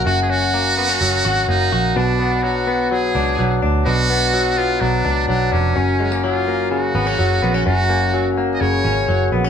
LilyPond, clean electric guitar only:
\new Staff \with { instrumentName = "Clean electric guitar" } { \time 4/4 \key fis \major \tempo 4 = 126 <fis, fis ais cis' fis'>8 cis'8 ais8 b16 cis'16 fis8 fis'8 ais8 fis'8 | <b, d'>8 b8 fis8 b8 fis8 d'8 fis8 d'8 | <b, d'>8 b8 fis8 b8 fis8 d'8 fis8 d'8 | <fis, cis'>8 gis16 ais16 fis8 ais8 cis8 b16 cis'16 fis8 b16 cis'16 |
<fis, cis'>8 ais8 fis8 ais8 cis8 cis'8 fis8 b16 cis'16 | }